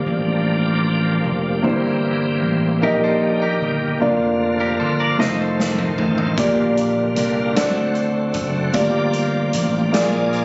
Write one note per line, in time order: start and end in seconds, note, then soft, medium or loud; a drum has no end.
0.00 0.41 G2 medium
0.00 1.63 F3 medium
0.00 1.61 A#3 medium
0.00 5.17 A#3 soft
0.00 1.63 D4 soft
0.00 1.60 F4 medium
0.00 1.60 G4 medium
0.00 1.63 G4 medium
0.00 1.61 D5 medium
0.06 1.21 A1 medium
1.24 1.61 F1 medium
1.62 2.44 G1 medium
1.62 2.78 G2 medium
1.62 2.82 E3 soft
1.62 2.80 A#3 medium
1.62 2.82 C4 soft
1.62 2.82 E4 medium
1.62 2.82 G4 medium
1.62 3.99 G4 soft
1.62 2.83 C5 medium
2.44 2.80 A1 medium
2.82 3.57 A#1 medium
2.82 3.97 A#2 medium
2.82 4.00 D#3 medium
2.82 4.00 G3 soft
2.82 3.98 A#3 medium
2.82 4.01 D#4 medium
2.82 4.01 G4 medium
2.82 3.02 G4 medium
2.82 3.02 A#4 medium
2.82 4.02 D#5 medium
3.04 3.41 A4 medium
3.04 3.41 C5 medium
3.42 3.99 G4 medium
3.42 3.98 A#4 medium
3.62 3.98 G1 medium
4.00 4.76 F1 medium
4.00 5.18 D3 medium
4.00 5.18 F3 soft
4.00 5.19 A#3 medium
4.00 5.19 D4 soft
4.00 5.18 F4 medium
4.00 7.53 F4 medium
4.00 5.20 D5 medium
4.60 4.79 G4 soft
4.60 4.79 A#4 medium
4.80 5.17 G1 medium
4.80 4.99 A4 medium
4.80 4.99 C5 medium
5.00 5.19 A#4 medium
5.00 5.19 D5 medium
5.18 5.95 F1 medium
5.18 6.37 D#3 medium
5.18 6.37 A3 medium
5.18 6.37 A3 soft
5.18 6.37 C4 medium
5.18 6.38 D#4 medium
5.18 6.36 F4 medium
5.18 6.38 C5 medium
5.18 5.39 C5 medium
5.18 5.38 D#5 medium
5.18 snare soft
5.40 6.35 A4 soft
5.40 6.35 C5 soft
5.60 snare medium
5.78 mid tom medium
5.98 6.35 A1 medium
5.98 floor tom medium
6.18 floor tom medium
6.37 7.13 A#1 medium
6.37 7.53 A#2 medium
6.37 8.73 D3 soft
6.37 7.55 G3 soft
6.37 7.56 A#3 medium
6.37 7.55 A#3 soft
6.37 7.56 F4 medium
6.37 7.57 G4 medium
6.37 7.56 D5 medium
6.37 kick medium
6.37 closed hi-hat medium
6.77 closed hi-hat soft
7.16 7.53 C2 medium
7.16 closed hi-hat medium
7.55 8.31 D2 medium
7.55 8.71 D3 medium
7.55 8.74 A3 soft
7.55 8.74 C4 medium
7.55 8.74 C4 soft
7.55 8.75 F#4 soft
7.55 8.74 F#4 medium
7.55 8.75 A4 medium
7.55 8.73 D5 medium
7.55 snare medium
7.55 closed hi-hat medium
7.95 closed hi-hat soft
8.34 8.71 F#1 medium
8.34 kick medium
8.34 closed hi-hat medium
8.73 9.50 G1 medium
8.73 9.89 G2 medium
8.73 10.45 F3 medium
8.73 8.80 A3 soft
8.73 10.45 A#3 soft
8.73 9.91 F4 medium
8.73 9.93 G4 medium
8.73 9.92 G4 medium
8.73 9.92 D5 medium
8.73 10.45 D5 soft
8.73 kick medium
8.73 closed hi-hat medium
8.79 9.90 A#3 medium
9.13 closed hi-hat soft
9.53 9.90 A1 medium
9.53 closed hi-hat medium
9.92 10.45 A#1 medium
9.92 10.45 A#2 medium
9.92 10.45 A#3 medium
9.92 10.45 F4 medium
9.92 10.45 G#4 medium
9.92 10.45 D5 medium
9.92 snare medium
9.92 closed hi-hat medium
10.33 closed hi-hat soft